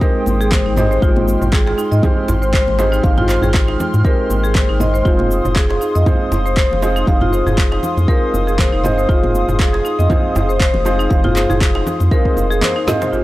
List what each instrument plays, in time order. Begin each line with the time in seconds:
Already playing: analog synth pad G#3 G5 C6 D#6
0.01 felt piano G#3 C4 D#4 G4 C5, marimba A#4, kick, shaker
0.26 sub bass G#1, muted conga, high conga, djembe tone, shaker
0.41 marimba G#4, shaker
0.52 marimba C5, kick, clap, high conga, low conga, shaker
0.66 sub bass G#1, marimba D#4
0.76 felt piano G#3 C4 D#4 G4 C5, marimba D#5, mid tom, muted conga, high conga, djembe tone, shaker
0.91 marimba C5, shaker
1.02 sub bass G#1, felt piano G#3 C4 D#4 G4 C5, marimba F4, analog synth pad F6, kick, shaker
1.16 mid tom, muted conga, high conga
1.27 high conga, shaker
1.42 sub bass G#1, mid tom, djembe tone, shaker
1.53 marimba G#4, kick, clap, shaker
1.67 marimba G#4, djembe slap
1.78 marimba D#4, shaker
1.92 sub bass G#2, marimba D#5, muted conga, shaker
2.03 felt piano G#3 C4 D#4 G4 C5, kick, high conga, djembe tone, low conga, djembe bass, shaker
2.28 sub bass G#1, djembe slap, muted conga, djembe bass, shaker
2.42 marimba C5, shaker
2.53 marimba C5, kick, clap, shaker
2.67 sub bass G#1, high conga, low conga
2.79 felt piano G#3 C4 D#4 G4 C5, djembe slap, muted conga, shaker
2.92 marimba D#4, shaker
3.04 sub bass G#1, felt piano G#3 C4 D#4 G4 C5, marimba F5, kick, low conga, shaker
3.18 marimba F4, mid tom, muted conga, high conga, djembe bass
3.29 marimba C5, clap, shaker
3.42 sub bass G#1, marimba G#4, mid tom, djembe tone, djembe bass, shaker
3.54 kick, clap, muted conga, shaker
3.68 marimba D#4, djembe slap
3.80 low conga, shaker
3.94 sub bass G#2, muted conga, djembe tone, shaker
4.05 felt piano G#3 C4 D#4 G4 C5, marimba A#4, kick, shaker
4.30 sub bass G#1, muted conga, djembe tone, high conga, shaker
4.44 marimba G#4, shaker
4.55 marimba C5, kick, clap, high conga, low conga, shaker
4.69 sub bass G#1, marimba D#4
4.80 marimba D#5, mid tom, muted conga, high conga, djembe tone, shaker
4.94 marimba C5, shaker
5.05 sub bass F1, felt piano G#3 C4 D#4 F4 C5, marimba F4, analog synth pad G#4 F5 D#6, kick, shaker
5.19 mid tom, muted conga, high conga
5.31 high conga, shaker
5.45 sub bass F1, mid tom, djembe tone, shaker
5.56 marimba G#4, kick, clap, muted conga, shaker
5.70 marimba G#4, djembe slap
5.81 marimba D#4, shaker
5.95 sub bass F2, marimba D#5, muted conga, shaker
6.06 felt piano G#3 C4 D#4 F4 C5, kick, djembe tone, high conga, low conga, djembe bass, shaker
6.32 sub bass F1, djembe slap, muted conga, djembe bass, shaker
6.46 marimba C5, shaker
6.57 marimba C5, kick, clap, shaker
6.71 sub bass F1, high conga, low conga
6.82 felt piano G#3 C4 D#4 F4 C5, djembe slap, muted conga, shaker
6.96 marimba D#4, shaker
7.07 sub bass F1, felt piano G#3 C4 D#4 F4 C5, marimba F5, kick, low conga, shaker
7.21 marimba F4, mid tom, muted conga, high conga, djembe bass
7.33 marimba C5, shaker
7.47 sub bass F1, marimba G#4, mid tom, djembe tone, djembe bass, shaker
7.58 kick, clap, muted conga, shaker
7.72 marimba D#4, djembe slap
7.83 low conga, shaker
7.97 sub bass F2, muted conga, djembe tone, shaker
8.08 felt piano G#3 C4 D#4 F4 C5, marimba A#4, kick, shaker
8.34 sub bass F1, muted conga, high conga, djembe tone, shaker
8.47 marimba G#4, shaker
8.58 marimba C5, kick, clap, high conga, low conga, shaker
8.72 sub bass F1, marimba D#4
8.84 felt piano G#3 C4 D#4 F4 C5, marimba D#5, mid tom, muted conga, high conga, djembe tone, shaker
8.98 marimba C5, shaker
9.09 sub bass F1, felt piano G#3 C4 D#4 F4 C5, marimba F4, kick, shaker
9.23 mid tom, muted conga, high conga
9.35 high conga, shaker
9.48 sub bass F1, mid tom, djembe tone, shaker
9.59 marimba G#4, kick, clap, muted conga, shaker
9.73 marimba G#4, djembe slap
9.85 marimba D#4, shaker
9.99 sub bass F2, marimba D#5, muted conga, shaker
10.10 felt piano G#3 C4 D#4 F4 C5, kick, high conga, djembe tone, djembe bass, low conga, shaker
10.35 sub bass F1, muted conga, djembe slap, djembe bass, shaker
10.49 marimba C5, shaker
10.60 marimba C5, kick, clap, shaker
10.74 sub bass F1, high conga, low conga
10.85 felt piano G#3 C4 D#4 F4 C5, muted conga, djembe slap, shaker
10.99 marimba D#4, shaker
11.10 sub bass F1, felt piano G#3 C4 D#4 F4 C5, marimba F5, kick, low conga, shaker
11.24 marimba F4, mid tom, muted conga, high conga, djembe bass
11.36 marimba C5, clap, high conga, shaker
11.50 sub bass F1, marimba G#4, mid tom, djembe tone, djembe bass, shaker
11.61 kick, clap, shaker
11.75 marimba D#4, djembe slap
11.87 low conga, shaker
12.00 sub bass F2, muted conga, djembe tone, shaker
12.11 felt piano G#3 C4 D#4 F4 C5, marimba A#4, kick, shaker
12.25 kick
12.37 sub bass F1, muted conga, high conga, djembe tone, shaker
12.51 marimba G#4, shaker
12.61 marimba C5, clap, djembe slap, high conga, low conga, shaker
12.76 marimba D#4
12.87 felt piano G#3 C4 D#4 F4 C5, marimba D#5, snare, mid tom, muted conga, djembe tone, high conga, shaker
13.01 marimba C5, mid tom, djembe slap, shaker
13.12 sub bass G#1, analog synth pad G#3 G5 C6 D#6, felt piano G#3 C4 D#4 G4 C5, marimba F4, shaker